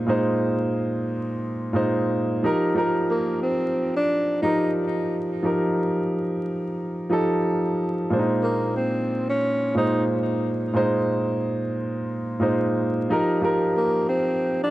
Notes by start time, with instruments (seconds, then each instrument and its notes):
Already playing: grand piano A#2 G#3 D#4 C5
0.07 grand piano A#2 G#3 D#4 C5
1.73 grand piano A#2 G#3 D#4 C5
2.43 grand piano F3 D#4 G4 A#4
2.75 grand piano F3 D#4 G4 A#4
3.10 tenor saxophone A#3
3.42 tenor saxophone C4
3.96 tenor saxophone D4
4.42 grand piano F3 D#4 G4 A#4, tenor saxophone D#4
5.43 grand piano F3 D#4 G4 A#4
7.10 grand piano F3 D#4 G4 A4
8.10 grand piano A#2 G#3 D4 C5
8.19 grand piano D#4
8.43 tenor saxophone A#3
8.76 tenor saxophone C4
9.29 tenor saxophone C#4
9.74 grand piano A#2 G#3 D#4 C5, tenor saxophone D#4
10.73 grand piano A#2 G#3 D#4 C5
12.40 grand piano A#2 G#3 D#4 C5
13.09 grand piano F3 D#4 G4 A#4
13.41 grand piano F3 D#4 G4 A#4
13.77 tenor saxophone A#3
14.09 tenor saxophone C4
14.63 tenor saxophone D4